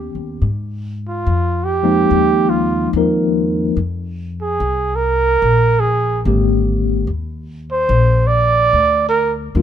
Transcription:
0.00 0.11 D#2 medium
0.00 0.42 D#3 soft
0.00 0.44 B3 soft
0.00 0.46 C#4 soft
0.00 0.19 G4 medium
0.00 0.48 G4 soft
0.15 0.41 D#2 medium
0.42 1.24 G#2 medium
1.09 1.66 F4 medium
1.26 2.08 F2 medium
1.64 2.51 G4 medium
1.83 2.88 F3 medium
1.83 2.89 G#3 medium
1.83 2.89 A#3 medium
1.83 2.89 C4 medium
1.83 2.89 D#4 medium
2.11 2.91 D#2 medium
2.50 2.90 F4 medium
2.93 3.74 D#2 medium
2.93 3.45 F3 medium
2.93 3.45 A#3 soft
2.93 3.45 C4 soft
2.93 3.45 D#4 medium
2.98 3.45 A#4 medium
3.77 4.57 F2 medium
4.42 4.98 G#4 medium
4.60 5.40 C2 medium
4.96 5.82 A#4 medium
5.42 6.22 A#1 medium
5.80 6.21 G#4 medium
6.25 7.05 G#1 medium
6.25 7.08 D3 medium
6.25 7.08 G#3 medium
6.25 7.08 A#3 medium
6.25 7.08 C4 medium
6.25 7.09 G4 medium
7.07 7.88 D#2 medium
7.72 8.29 C5 medium
7.89 8.70 A#1 medium
8.27 9.05 D5 medium
8.73 9.53 D2 medium
9.09 9.34 A#4 medium
9.55 9.62 D#2 medium
9.55 9.62 D#3 medium
9.55 9.62 G3 medium
9.55 9.62 A#3 medium
9.55 9.62 D4 medium
9.55 9.62 F4 medium

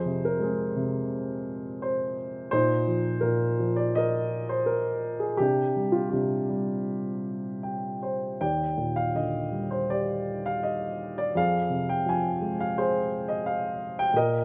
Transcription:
0.00 2.48 F2 medium
0.00 0.41 G#4 medium
0.00 0.20 C5 medium
0.06 0.75 C3 soft
0.25 0.42 A#4 medium
0.39 1.78 G#3 medium
0.39 2.15 C4 soft
0.39 2.15 G#4 medium
0.76 2.14 C3 soft
1.82 2.48 C5 medium
2.51 3.21 A#2 medium
2.51 3.93 D#4 medium
2.51 3.18 C5 loud
2.87 3.58 F3 soft
3.21 4.65 A#2 medium
3.21 3.73 A#4 medium
3.59 5.00 F3 medium
3.76 3.94 D5 medium
3.95 4.65 A#4 medium
3.95 4.47 D#5 loud
4.49 4.68 C5 medium
4.66 5.23 A#4 medium
5.20 5.38 G#4 medium
5.37 6.12 C3 medium
5.37 6.11 D4 medium
5.37 5.95 G4 medium
5.76 6.48 G3 soft
5.92 6.12 F4 medium
6.09 7.59 C3 medium
6.09 7.98 D4 soft
6.09 7.96 G4 medium
6.50 7.98 G3 soft
7.63 7.99 G5 medium
8.03 8.38 C5 medium
8.41 11.31 D#2 medium
8.41 9.85 D5 medium
8.41 8.98 G5 medium
8.78 10.21 A#2 soft
8.96 9.13 F5 medium
9.15 10.58 D3 soft
9.15 9.67 D#5 medium
9.52 10.95 G3 soft
9.71 9.88 C5 medium
9.90 11.31 G4 medium
9.90 10.46 D5 medium
10.46 10.62 F5 medium
10.63 11.13 D#5 medium
11.18 11.36 D5 medium
11.35 14.11 F2 medium
11.35 12.74 G#4 medium
11.35 11.86 F5 medium
11.70 13.07 C3 soft
11.89 12.07 G5 medium
12.06 13.42 F3 medium
12.06 12.57 G#5 medium
12.42 13.76 G#3 soft
12.60 12.78 F5 medium
12.78 14.11 G#4 medium
12.78 13.31 C5 medium
13.28 13.46 D#5 medium
13.46 13.99 F5 medium
13.99 14.16 G5 loud
14.14 14.45 A#2 medium
14.14 14.45 A#4 medium
14.14 14.45 D#5 medium

